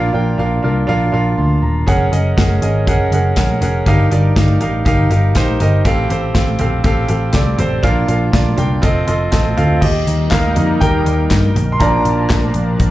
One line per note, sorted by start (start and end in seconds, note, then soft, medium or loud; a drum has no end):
0.00 0.60 A#2 medium
0.00 0.12 C6 medium
0.13 0.35 A#1 medium
0.13 0.32 D4 medium
0.13 0.32 F4 medium
0.13 0.33 A#4 medium
0.13 0.33 G5 medium
0.38 0.59 A#1 medium
0.38 0.57 D4 medium
0.38 0.57 F4 medium
0.38 0.58 A#4 medium
0.38 0.58 F5 medium
0.63 0.84 C2 medium
0.63 0.82 D4 medium
0.63 0.82 F4 medium
0.63 0.83 A#4 medium
0.63 0.83 F5 medium
0.87 1.09 A#1 medium
0.87 1.07 D4 medium
0.87 1.07 F4 medium
0.87 1.07 A#4 medium
0.87 1.07 F5 loud
1.12 1.34 A#1 medium
1.12 1.32 D4 medium
1.12 1.32 F4 medium
1.12 1.32 A#4 medium
1.12 1.32 F5 medium
1.38 1.59 D2 medium
1.38 1.62 C6 medium
1.62 1.83 D#1 medium
1.62 2.10 A#5 medium
1.87 2.08 F#1 medium
1.87 2.06 C#4 medium
1.87 2.06 G#4 medium
1.87 2.07 A#4 medium
1.87 2.07 F#5 loud
1.87 kick medium
1.87 closed hi-hat medium
2.11 2.33 F#1 medium
2.11 2.31 C#4 medium
2.11 2.31 G#4 medium
2.11 2.31 A#4 medium
2.11 2.32 D#5 medium
2.11 closed hi-hat medium
2.36 2.58 F#1 medium
2.36 2.56 C#4 medium
2.36 2.56 G#4 medium
2.36 2.56 A#4 medium
2.36 2.57 F#5 medium
2.36 kick loud
2.36 snare loud
2.36 closed hi-hat medium
2.61 2.87 G#1 medium
2.61 2.81 C#4 medium
2.61 2.81 G#4 medium
2.61 2.81 A#4 medium
2.61 2.81 D#5 medium
2.61 closed hi-hat medium
2.87 3.08 F#1 medium
2.87 3.06 C#4 medium
2.87 3.06 G#4 medium
2.87 3.06 A#4 medium
2.87 3.07 F#5 medium
2.87 kick medium
2.87 closed hi-hat medium
3.12 3.32 F#1 medium
3.12 3.31 C#4 medium
3.12 3.31 G#4 medium
3.12 3.31 A#4 medium
3.12 3.32 F#5 medium
3.12 closed hi-hat medium
3.36 3.57 A#1 medium
3.36 3.56 C#4 medium
3.36 3.56 G#4 medium
3.36 3.56 A#4 medium
3.36 3.56 F#5 medium
3.36 kick loud
3.36 snare medium
3.36 closed hi-hat medium
3.61 3.82 F1 medium
3.61 3.80 C#4 medium
3.61 3.80 G#4 medium
3.61 3.81 A#4 medium
3.61 3.81 F#5 medium
3.61 closed hi-hat medium
3.86 4.07 G1 medium
3.86 4.57 G2 medium
3.86 4.05 D#4 medium
3.86 4.05 G4 medium
3.86 4.06 A#4 medium
3.86 4.06 F5 loud
3.86 kick medium
3.86 closed hi-hat medium
4.11 4.31 G1 medium
4.11 4.30 D#4 medium
4.11 4.30 G4 medium
4.11 4.30 A#4 medium
4.11 4.31 D5 medium
4.11 closed hi-hat medium
4.36 4.57 G1 loud
4.36 4.55 D#4 medium
4.36 4.55 G4 medium
4.36 4.55 A#4 medium
4.36 4.56 F5 medium
4.36 kick loud
4.36 snare loud
4.36 closed hi-hat medium
4.60 4.88 A1 medium
4.60 4.79 D#4 medium
4.60 4.80 G4 medium
4.60 4.80 A#4 medium
4.60 4.80 F5 medium
4.60 closed hi-hat medium
4.85 5.06 G1 medium
4.85 5.04 D#4 medium
4.85 5.04 G4 medium
4.85 5.05 A#4 medium
4.85 5.05 F5 loud
4.85 kick loud
4.85 closed hi-hat medium
5.10 5.36 G1 medium
5.10 5.29 D#4 medium
5.10 5.29 G4 medium
5.10 5.30 A#4 medium
5.10 5.30 F5 medium
5.10 closed hi-hat medium
5.35 5.56 A#1 medium
5.35 5.54 D#4 medium
5.35 5.54 G4 medium
5.35 5.54 A#4 medium
5.35 5.55 C5 medium
5.35 kick medium
5.35 snare medium
5.35 closed hi-hat medium
5.60 5.81 G1 medium
5.60 5.79 D#4 medium
5.60 5.79 G4 medium
5.60 5.79 A#4 medium
5.60 5.80 D#5 medium
5.60 closed hi-hat medium
5.85 6.06 A1 medium
5.85 6.56 A2 medium
5.85 6.04 C4 medium
5.85 6.04 G4 medium
5.85 6.04 A4 medium
5.85 6.04 F5 loud
5.85 kick medium
5.85 closed hi-hat medium
6.09 6.30 A1 medium
6.09 6.28 C4 medium
6.09 6.29 G4 medium
6.09 6.29 A4 medium
6.09 6.29 C5 medium
6.09 closed hi-hat medium
6.34 6.55 A1 medium
6.34 6.53 C4 medium
6.34 6.54 G4 medium
6.34 6.54 A4 medium
6.34 6.54 F5 medium
6.34 kick loud
6.34 snare loud
6.34 closed hi-hat medium
6.59 6.80 A#1 medium
6.59 6.78 C4 medium
6.59 6.78 G4 medium
6.59 6.79 A4 medium
6.59 6.79 F5 medium
6.59 closed hi-hat medium
6.59 floor tom medium
6.84 7.05 A1 medium
6.84 7.03 C4 medium
6.84 7.03 G4 medium
6.84 7.03 A4 medium
6.84 7.04 F5 loud
6.84 kick loud
6.84 closed hi-hat medium
7.08 7.30 A1 medium
7.08 7.27 C4 medium
7.08 7.28 G4 medium
7.08 7.28 A4 medium
7.08 7.28 F5 medium
7.08 closed hi-hat medium
7.33 7.54 C2 medium
7.33 7.52 C4 medium
7.33 7.52 G4 medium
7.33 7.52 A4 medium
7.33 7.53 D5 medium
7.33 kick medium
7.33 snare medium
7.33 closed hi-hat medium
7.58 7.79 A1 medium
7.58 7.77 C4 medium
7.58 7.77 G4 medium
7.58 7.77 A4 medium
7.58 7.78 C5 medium
7.58 closed hi-hat medium
7.58 floor tom medium
7.83 8.04 A#1 medium
7.83 8.54 A#2 medium
7.83 8.02 D4 loud
7.83 8.02 F4 medium
7.83 8.02 A#4 medium
7.83 8.03 F5 loud
7.83 kick medium
7.83 closed hi-hat medium
8.08 8.29 A#1 medium
8.08 8.27 D4 medium
8.08 8.27 F4 medium
8.08 8.27 A#4 medium
8.08 8.27 F5 medium
8.08 closed hi-hat medium
8.32 8.54 A#1 loud
8.32 8.51 D4 medium
8.32 8.52 F4 medium
8.32 8.52 A#4 medium
8.32 8.52 D5 medium
8.32 kick loud
8.32 snare loud
8.32 closed hi-hat medium
8.57 8.79 C2 medium
8.57 8.76 D4 medium
8.57 8.76 F4 medium
8.57 8.77 A#4 medium
8.57 8.77 G5 medium
8.57 closed hi-hat medium
8.57 floor tom soft
8.82 9.03 F1 medium
8.82 9.01 C4 medium
8.82 9.01 F4 medium
8.82 9.02 A4 medium
8.82 9.02 D#5 loud
8.82 kick medium
8.82 closed hi-hat medium
9.07 9.28 F1 medium
9.07 9.26 C4 medium
9.07 9.26 F4 medium
9.07 9.27 A4 medium
9.07 9.27 D#5 medium
9.07 9.31 C6 medium
9.07 closed hi-hat medium
9.32 9.53 A1 medium
9.32 9.51 C4 medium
9.32 9.51 F4 medium
9.32 9.52 A4 medium
9.32 9.52 D#5 medium
9.32 9.56 A5 medium
9.32 kick loud
9.32 snare medium
9.32 closed hi-hat medium
9.57 9.78 D2 medium
9.57 9.76 C4 medium
9.57 9.76 F4 medium
9.57 9.76 A4 medium
9.57 9.77 F5 medium
9.57 closed hi-hat medium
9.57 floor tom medium
9.81 10.03 D#2 medium
9.81 11.54 G3 medium
9.81 11.54 D#4 medium
9.81 10.29 G4 medium
9.81 11.54 A#4 medium
9.81 10.28 D#5 medium
9.81 kick medium
9.81 crash medium
10.07 10.28 D#2 medium
10.07 closed hi-hat medium
10.31 10.52 D#2 loud
10.31 10.78 A#4 medium
10.31 10.77 F5 medium
10.31 kick loud
10.31 snare loud
10.31 clap medium
10.31 closed hi-hat medium
10.56 10.77 F2 medium
10.56 11.27 G3 soft
10.56 11.27 A#3 soft
10.56 11.27 D#4 medium
10.56 closed hi-hat medium
10.56 floor tom medium
10.81 11.02 D#2 medium
10.81 11.70 A#4 medium
10.81 11.76 G5 medium
10.81 kick loud
10.81 closed hi-hat medium
11.06 11.27 D#2 medium
11.06 closed hi-hat medium
11.30 11.51 G2 medium
11.30 kick medium
11.30 snare medium
11.30 clap medium
11.30 closed hi-hat medium
11.56 11.96 A#1 medium
11.56 12.91 F3 medium
11.56 12.91 D4 medium
11.56 12.91 A#4 medium
11.56 closed hi-hat medium
11.56 floor tom medium
11.72 11.80 C6 medium
11.80 12.91 F3 medium
11.80 12.91 A#3 soft
11.80 12.91 D4 medium
11.80 12.76 D5 medium
11.80 12.75 A#5 medium
11.80 kick loud
11.80 closed hi-hat medium
12.05 12.26 A#1 medium
12.05 closed hi-hat medium
12.30 12.51 A#1 medium
12.30 kick loud
12.30 snare loud
12.30 clap medium
12.30 closed hi-hat medium
12.54 12.75 A#1 medium
12.54 closed hi-hat medium
12.80 12.91 A#1 medium
12.80 kick loud
12.80 closed hi-hat medium